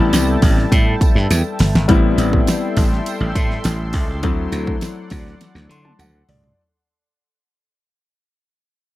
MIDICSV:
0, 0, Header, 1, 6, 480
1, 0, Start_track
1, 0, Key_signature, 0, "minor"
1, 0, Tempo, 587084
1, 1543, Time_signature, 4, 2, 24, 8
1, 7324, End_track
2, 0, Start_track
2, 0, Title_t, "Analog synth pad"
2, 0, Program_c, 0, 89
2, 0, Note_on_c, 0, 69, 79
2, 0, Note_on_c, 0, 76, 71
2, 0, Note_on_c, 0, 79, 71
2, 0, Note_on_c, 0, 81, 90
2, 1511, Note_off_c, 0, 76, 0
2, 1512, Note_off_c, 0, 79, 0
2, 1512, Note_off_c, 0, 81, 0
2, 1513, Note_off_c, 0, 69, 0
2, 1542, Note_on_c, 0, 69, 83
2, 1545, Note_on_c, 0, 84, 87
2, 1546, Note_on_c, 0, 79, 74
2, 1548, Note_on_c, 0, 76, 73
2, 3443, Note_off_c, 0, 79, 0
2, 3444, Note_off_c, 0, 76, 0
2, 3466, Note_on_c, 0, 74, 74
2, 3468, Note_on_c, 0, 78, 78
2, 5348, Note_off_c, 0, 69, 0
2, 5349, Note_off_c, 0, 84, 0
2, 5365, Note_off_c, 0, 74, 0
2, 5365, Note_off_c, 0, 78, 0
2, 7324, End_track
3, 0, Start_track
3, 0, Title_t, "Grand piano"
3, 0, Program_c, 1, 0
3, 0, Note_on_c, 1, 64, 96
3, 1035, Note_off_c, 1, 64, 0
3, 7324, End_track
4, 0, Start_track
4, 0, Title_t, "Grand piano"
4, 0, Program_c, 2, 0
4, 0, Control_c, 2, 64, 127
4, 0, Note_on_c, 2, 55, 71
4, 0, Note_on_c, 2, 59, 58
4, 0, Note_on_c, 2, 60, 64
4, 0, Note_on_c, 2, 64, 75
4, 1507, Note_off_c, 2, 55, 0
4, 1509, Note_off_c, 2, 59, 0
4, 1511, Note_off_c, 2, 60, 0
4, 1517, Note_off_c, 2, 64, 0
4, 1537, Note_on_c, 2, 55, 82
4, 1543, Note_on_c, 2, 59, 72
4, 1548, Note_on_c, 2, 60, 72
4, 1554, Control_c, 2, 64, 0
4, 1555, Note_on_c, 2, 64, 89
4, 1686, Control_c, 2, 64, 127
4, 3425, Note_off_c, 2, 55, 0
4, 3428, Note_off_c, 2, 59, 0
4, 3431, Note_off_c, 2, 60, 0
4, 3435, Note_off_c, 2, 64, 0
4, 3459, Note_on_c, 2, 54, 79
4, 3465, Note_on_c, 2, 57, 76
4, 3470, Note_on_c, 2, 60, 74
4, 3472, Control_c, 2, 64, 0
4, 3479, Note_on_c, 2, 64, 82
4, 3621, Control_c, 2, 64, 127
4, 4666, Note_on_c, 2, 84, 71
4, 4776, Note_off_c, 2, 84, 0
4, 4781, Note_on_c, 2, 81, 64
4, 4893, Note_off_c, 2, 81, 0
4, 4901, Note_on_c, 2, 78, 69
4, 5124, Note_off_c, 2, 78, 0
4, 5143, Note_on_c, 2, 74, 72
4, 5347, Note_off_c, 2, 54, 0
4, 5350, Note_off_c, 2, 57, 0
4, 5353, Note_off_c, 2, 60, 0
4, 5358, Note_off_c, 2, 64, 0
4, 5365, Note_off_c, 2, 74, 0
4, 5391, Control_c, 2, 64, 0
4, 7324, End_track
5, 0, Start_track
5, 0, Title_t, "Slap bass"
5, 0, Program_c, 3, 36
5, 0, Note_on_c, 3, 33, 92
5, 106, Note_off_c, 3, 33, 0
5, 106, Note_on_c, 3, 36, 94
5, 290, Note_off_c, 3, 36, 0
5, 346, Note_on_c, 3, 33, 92
5, 530, Note_off_c, 3, 33, 0
5, 587, Note_on_c, 3, 45, 101
5, 770, Note_off_c, 3, 45, 0
5, 943, Note_on_c, 3, 43, 88
5, 1035, Note_off_c, 3, 43, 0
5, 1066, Note_on_c, 3, 40, 94
5, 1157, Note_off_c, 3, 40, 0
5, 1306, Note_on_c, 3, 31, 78
5, 1397, Note_off_c, 3, 31, 0
5, 1429, Note_on_c, 3, 32, 85
5, 1519, Note_off_c, 3, 32, 0
5, 1545, Note_on_c, 3, 33, 95
5, 1728, Note_off_c, 3, 33, 0
5, 1779, Note_on_c, 3, 33, 91
5, 1965, Note_off_c, 3, 33, 0
5, 2263, Note_on_c, 3, 33, 88
5, 2447, Note_off_c, 3, 33, 0
5, 2620, Note_on_c, 3, 33, 94
5, 2713, Note_off_c, 3, 33, 0
5, 2741, Note_on_c, 3, 45, 100
5, 2926, Note_off_c, 3, 45, 0
5, 2983, Note_on_c, 3, 33, 98
5, 3218, Note_off_c, 3, 33, 0
5, 3218, Note_on_c, 3, 37, 87
5, 3460, Note_off_c, 3, 37, 0
5, 3460, Note_on_c, 3, 38, 110
5, 3645, Note_off_c, 3, 38, 0
5, 3697, Note_on_c, 3, 38, 106
5, 3883, Note_off_c, 3, 38, 0
5, 4180, Note_on_c, 3, 38, 88
5, 4365, Note_off_c, 3, 38, 0
5, 4537, Note_on_c, 3, 38, 90
5, 4631, Note_off_c, 3, 38, 0
5, 4652, Note_on_c, 3, 50, 100
5, 4840, Note_off_c, 3, 50, 0
5, 4896, Note_on_c, 3, 38, 99
5, 5082, Note_off_c, 3, 38, 0
5, 5137, Note_on_c, 3, 37, 81
5, 5323, Note_off_c, 3, 37, 0
5, 7324, End_track
6, 0, Start_track
6, 0, Title_t, "Drums"
6, 106, Note_on_c, 9, 42, 88
6, 114, Note_on_c, 9, 38, 127
6, 114, Note_on_c, 9, 54, 89
6, 187, Note_off_c, 9, 42, 0
6, 196, Note_off_c, 9, 38, 0
6, 196, Note_off_c, 9, 54, 0
6, 345, Note_on_c, 9, 46, 72
6, 346, Note_on_c, 9, 36, 96
6, 355, Note_on_c, 9, 54, 54
6, 427, Note_off_c, 9, 46, 0
6, 428, Note_off_c, 9, 36, 0
6, 436, Note_off_c, 9, 54, 0
6, 475, Note_on_c, 9, 38, 33
6, 557, Note_off_c, 9, 38, 0
6, 587, Note_on_c, 9, 36, 93
6, 589, Note_on_c, 9, 54, 44
6, 591, Note_on_c, 9, 42, 95
6, 669, Note_off_c, 9, 36, 0
6, 671, Note_off_c, 9, 54, 0
6, 673, Note_off_c, 9, 42, 0
6, 826, Note_on_c, 9, 36, 100
6, 831, Note_on_c, 9, 42, 66
6, 834, Note_on_c, 9, 54, 39
6, 908, Note_off_c, 9, 36, 0
6, 912, Note_off_c, 9, 42, 0
6, 916, Note_off_c, 9, 54, 0
6, 956, Note_on_c, 9, 38, 35
6, 1038, Note_off_c, 9, 38, 0
6, 1067, Note_on_c, 9, 42, 81
6, 1070, Note_on_c, 9, 54, 91
6, 1077, Note_on_c, 9, 38, 57
6, 1149, Note_off_c, 9, 42, 0
6, 1152, Note_off_c, 9, 54, 0
6, 1159, Note_off_c, 9, 38, 0
6, 1301, Note_on_c, 9, 46, 74
6, 1311, Note_on_c, 9, 38, 94
6, 1311, Note_on_c, 9, 54, 31
6, 1382, Note_off_c, 9, 46, 0
6, 1393, Note_off_c, 9, 38, 0
6, 1393, Note_off_c, 9, 54, 0
6, 1434, Note_on_c, 9, 38, 89
6, 1516, Note_off_c, 9, 38, 0
6, 1543, Note_on_c, 9, 42, 82
6, 1545, Note_on_c, 9, 36, 110
6, 1551, Note_on_c, 9, 54, 36
6, 1625, Note_off_c, 9, 42, 0
6, 1627, Note_off_c, 9, 36, 0
6, 1633, Note_off_c, 9, 54, 0
6, 1782, Note_on_c, 9, 54, 53
6, 1785, Note_on_c, 9, 42, 75
6, 1789, Note_on_c, 9, 38, 37
6, 1863, Note_off_c, 9, 54, 0
6, 1866, Note_off_c, 9, 42, 0
6, 1871, Note_off_c, 9, 38, 0
6, 1906, Note_on_c, 9, 36, 90
6, 1987, Note_off_c, 9, 36, 0
6, 2023, Note_on_c, 9, 42, 93
6, 2028, Note_on_c, 9, 54, 82
6, 2031, Note_on_c, 9, 38, 112
6, 2105, Note_off_c, 9, 42, 0
6, 2110, Note_off_c, 9, 54, 0
6, 2113, Note_off_c, 9, 38, 0
6, 2262, Note_on_c, 9, 46, 77
6, 2265, Note_on_c, 9, 36, 103
6, 2271, Note_on_c, 9, 54, 54
6, 2343, Note_off_c, 9, 46, 0
6, 2347, Note_off_c, 9, 36, 0
6, 2353, Note_off_c, 9, 54, 0
6, 2391, Note_on_c, 9, 38, 32
6, 2473, Note_off_c, 9, 38, 0
6, 2504, Note_on_c, 9, 42, 94
6, 2506, Note_on_c, 9, 54, 44
6, 2586, Note_off_c, 9, 42, 0
6, 2587, Note_off_c, 9, 54, 0
6, 2743, Note_on_c, 9, 36, 100
6, 2745, Note_on_c, 9, 42, 67
6, 2745, Note_on_c, 9, 54, 42
6, 2825, Note_off_c, 9, 36, 0
6, 2827, Note_off_c, 9, 42, 0
6, 2827, Note_off_c, 9, 54, 0
6, 2867, Note_on_c, 9, 38, 33
6, 2949, Note_off_c, 9, 38, 0
6, 2976, Note_on_c, 9, 42, 84
6, 2982, Note_on_c, 9, 54, 82
6, 2986, Note_on_c, 9, 38, 102
6, 3058, Note_off_c, 9, 42, 0
6, 3064, Note_off_c, 9, 54, 0
6, 3067, Note_off_c, 9, 38, 0
6, 3212, Note_on_c, 9, 46, 80
6, 3219, Note_on_c, 9, 36, 82
6, 3294, Note_off_c, 9, 46, 0
6, 3301, Note_off_c, 9, 36, 0
6, 3458, Note_on_c, 9, 42, 80
6, 3459, Note_on_c, 9, 54, 36
6, 3461, Note_on_c, 9, 36, 105
6, 3540, Note_off_c, 9, 42, 0
6, 3541, Note_off_c, 9, 54, 0
6, 3543, Note_off_c, 9, 36, 0
6, 3695, Note_on_c, 9, 54, 50
6, 3700, Note_on_c, 9, 42, 81
6, 3704, Note_on_c, 9, 38, 33
6, 3777, Note_off_c, 9, 54, 0
6, 3782, Note_off_c, 9, 42, 0
6, 3786, Note_off_c, 9, 38, 0
6, 3821, Note_on_c, 9, 36, 94
6, 3902, Note_off_c, 9, 36, 0
6, 3935, Note_on_c, 9, 42, 88
6, 3943, Note_on_c, 9, 38, 117
6, 3943, Note_on_c, 9, 54, 88
6, 4017, Note_off_c, 9, 42, 0
6, 4025, Note_off_c, 9, 38, 0
6, 4025, Note_off_c, 9, 54, 0
6, 4172, Note_on_c, 9, 46, 74
6, 4179, Note_on_c, 9, 36, 98
6, 4184, Note_on_c, 9, 54, 50
6, 4253, Note_off_c, 9, 46, 0
6, 4261, Note_off_c, 9, 36, 0
6, 4265, Note_off_c, 9, 54, 0
6, 4306, Note_on_c, 9, 38, 33
6, 4387, Note_off_c, 9, 38, 0
6, 4421, Note_on_c, 9, 42, 93
6, 4423, Note_on_c, 9, 54, 40
6, 4425, Note_on_c, 9, 38, 57
6, 4503, Note_off_c, 9, 42, 0
6, 4505, Note_off_c, 9, 54, 0
6, 4507, Note_off_c, 9, 38, 0
6, 4548, Note_on_c, 9, 38, 57
6, 4630, Note_off_c, 9, 38, 0
6, 4666, Note_on_c, 9, 42, 64
6, 4666, Note_on_c, 9, 54, 42
6, 4748, Note_off_c, 9, 42, 0
6, 4748, Note_off_c, 9, 54, 0
6, 4784, Note_on_c, 9, 48, 63
6, 4865, Note_off_c, 9, 48, 0
6, 4901, Note_on_c, 9, 42, 78
6, 4902, Note_on_c, 9, 54, 80
6, 4904, Note_on_c, 9, 47, 77
6, 4983, Note_off_c, 9, 42, 0
6, 4983, Note_off_c, 9, 54, 0
6, 4986, Note_off_c, 9, 47, 0
6, 5140, Note_on_c, 9, 46, 71
6, 5144, Note_on_c, 9, 43, 96
6, 5222, Note_off_c, 9, 46, 0
6, 5226, Note_off_c, 9, 43, 0
6, 5260, Note_on_c, 9, 43, 80
6, 5341, Note_off_c, 9, 43, 0
6, 7324, End_track
0, 0, End_of_file